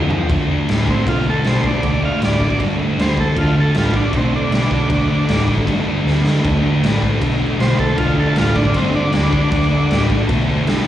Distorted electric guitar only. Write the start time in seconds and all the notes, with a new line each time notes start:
0.09 F3 F4
0.29 D3 A3
0.33 D4
0.48 A3 D4
0.85 D4
0.89 A3
1.05 D3 A3 D4
1.26 D4
1.30 A3
1.44 D3 A3 D4
1.63 D4
1.68 A3
1.82 D3 A3
1.86 D4
2.02 A3 D4
2.40 D4
2.44 A3
2.58 D3 A3 D4
2.77 D4
2.82 A3
2.98 D3 A3
3.02 D4
3.17 A3 D4
3.37 D3 A3
3.41 D4
3.56 A3 D4
3.93 D4
3.97 A3
4.13 D3 A3 D4
4.33 D4
4.37 A3
4.52 D3 A3 D4
4.70 D4
4.74 A3
4.88 D3 A3
4.92 D4
5.08 A3 D4
5.45 A3 D4
5.64 D3 A3 D4
5.82 D4
5.86 A3
6.03 D3 A3 D4
6.22 A3 D4
6.40 D3 A3
6.44 D4
6.59 D4
6.63 A3
6.99 D4
7.03 A3
7.19 D3 A3
7.24 D4
7.38 D4
7.42 A3
7.57 D3 A3
7.61 D4
7.77 A3 D4
7.96 D3 A3
8.01 D4
8.16 D4
8.20 A3
8.55 D4
8.59 A3
8.74 D3 A3 D4
8.91 D4
8.96 A3
9.11 D3 A3
9.15 D4
9.29 A3 D4
9.49 D3 A3
9.53 D4
9.69 A3 D4
10.07 D4
10.11 A3
10.27 D3 A3 D4
10.44 D4
10.50 A3
10.65 D3 A3 D4
10.84 D4